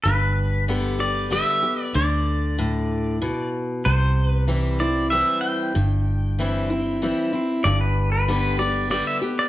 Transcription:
0.04 G1 G2 B4
0.68 D3 G3 B3 G4
0.99 B3 G4 D5
1.31 D3 G3 B3 G4 E5
1.63 B3 G4
1.83 D5
1.94 D2 D3 D5
2.59 A2
3.22 B2
3.85 C2 C3 C5
4.27 B4
4.47 E3 G3 C4 E4
4.80 C4 E4 D5
5.10 E3 G3 C4 E4 E5
5.41 G5
5.75 G1 G2
6.39 E3 G3 C4 E4
6.70 C4 E4
7.02 E3 G3 C4 E4
7.33 C4 E4
7.64 G1 G2 D5
7.81 B4
8.12 B4
8.28 D3 G3 B3 G4
8.59 B3 G4 D5
8.90 D3 G3 B3 G4 D5
9.07 E5
9.22 B3 G4
9.39 D5

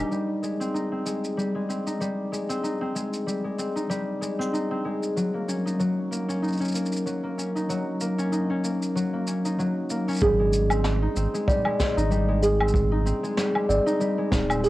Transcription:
Already playing: A#3 D#4 G4
0.11 G3, shaker
0.43 G#3, shaker
0.60 C4, shaker
0.74 D#4, shaker
0.92 C4
1.06 G#3, shaker
1.25 shaker
1.37 G3, shaker
1.55 G#3
1.69 C4, shaker
1.87 D#4, shaker
2.00 G3, shaker
2.32 G#3, shaker
2.49 C4, shaker
2.63 D#4, shaker
2.81 C4
2.95 G#3, shaker
3.14 shaker
3.27 G3, shaker
3.44 G#3
3.58 C4, shaker
3.76 D#4, shaker
3.90 G3, shaker
4.21 G#3, shaker
4.39 C4, shaker
4.53 D#4, shaker
4.71 C4
4.85 G#3
5.03 shaker
5.16 F#3, shaker
5.34 A#3
5.48 C#4, shaker
5.65 D#4, shaker
5.79 F#3, shaker
6.11 A#3, shaker
6.28 C#4, shaker
6.42 D#4, shaker
6.48 shaker
6.52 shaker
6.57 C#4, shaker
6.61 shaker
6.64 shaker
6.68 shaker
6.72 A#3, shaker
6.75 shaker
6.86 shaker
6.92 shaker
6.96 shaker
7.05 F#3, shaker
7.23 A#3
7.38 C#4, shaker
7.55 D#4, shaker
7.69 F#3, shaker
8.01 A#3, shaker
8.18 C#4, shaker
8.32 D#4, shaker
8.50 C#4
8.64 A#3, shaker
8.82 shaker
8.95 F#3, shaker
9.13 A#3
9.27 C#4, shaker
9.45 D#4, shaker
9.58 F#3, shaker
9.90 A#3, shaker
10.08 C#4, shaker
10.10 shaker
10.13 shaker
10.14 shaker
10.16 shaker
10.18 shaker
10.20 G#1 G3 G#4, kick, shaker
10.39 G#3
10.53 shaker
10.70 C4, low woodblock, shaker
10.84 snare, shaker
11.02 D#4
11.16 G#1 C4, shaker
11.34 G#3, shaker
11.48 G3 D5, kick, shaker
11.65 G#3, low woodblock
11.79 C4, kick, snare, shaker
11.97 G#1 D#4, shaker
12.11 G3, shaker
12.28 G#3
12.43 G#4, shaker
12.60 C4, low woodblock
12.68 shaker
12.74 kick, shaker
12.92 D#4
13.05 C4, shaker
13.23 G#3, shaker
13.37 G3, snare, shaker
13.55 G#3, low woodblock
13.69 G#1 C4 D5, shaker
13.86 D#4, shaker
14.00 G3, shaker
14.18 G#3
14.32 D#1, kick, snare, shaker
14.50 C4, low woodblock, shaker
14.64 G#4, shaker

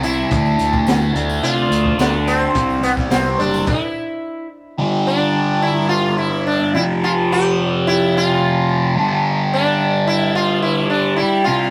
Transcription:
Already playing: C2
0.03 C3 G3 C4 E4, closed hi-hat, tambourine
0.31 D2 D3 A3 D4, kick, closed hi-hat, tambourine
0.45 tambourine
0.59 D2, closed hi-hat, tambourine
0.73 kick, tambourine
0.87 D2, snare, closed hi-hat, tambourine
1.01 tambourine
1.14 D2 D3 A3 D4, closed hi-hat, tambourine
1.29 tambourine
1.43 C3 F4, closed hi-hat
1.58 tambourine
1.70 D2, closed hi-hat, tambourine
1.85 kick
1.98 D2 D3 A3 D4, snare, closed hi-hat, tambourine
2.27 C4, closed hi-hat, tambourine
2.42 tambourine
2.55 C2 C3 G3 C4, kick, closed hi-hat, tambourine
2.70 tambourine
2.83 C2 B3, closed hi-hat, tambourine
2.97 kick, snare, tambourine
3.11 C2 C4, snare, closed hi-hat, tambourine
3.26 tambourine
3.39 F#1 C3 G3 C4 D4, closed hi-hat
3.54 tambourine
3.67 E4, kick, crash
4.79 G2 D3 G3
5.07 D4
5.62 E4
5.89 F4
6.18 E4
6.47 D4
6.74 F2 C3 F3 E4
7.04 F4
7.32 G4
7.87 E4
8.17 F4
8.96 G2 D3 G3
9.54 D4
10.07 E4
10.35 F4
10.62 E4
10.90 D4
11.16 E4
11.44 C3 G3 F4
11.49 C4

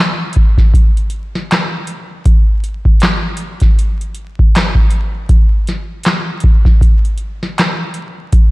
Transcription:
0.33 kick, closed hi-hat
0.58 kick, snare
0.74 kick, closed hi-hat
0.97 closed hi-hat
1.10 closed hi-hat
1.35 snare
1.51 snare, clap, closed hi-hat
1.87 closed hi-hat
2.25 kick, closed hi-hat
2.64 closed hi-hat
2.85 kick
3.00 snare, clap, closed hi-hat
3.37 closed hi-hat
3.60 kick, snare, closed hi-hat
3.79 closed hi-hat
4.01 closed hi-hat
4.15 closed hi-hat
4.39 kick
4.55 snare, clap, closed hi-hat
4.75 kick
4.90 closed hi-hat
5.29 kick, closed hi-hat
5.67 snare, closed hi-hat
6.03 snare, clap, closed hi-hat
6.40 kick, closed hi-hat
6.65 kick, snare
6.81 kick, closed hi-hat
7.05 closed hi-hat
7.18 closed hi-hat
7.43 snare
7.58 snare, clap, closed hi-hat
7.94 closed hi-hat
8.32 kick, closed hi-hat

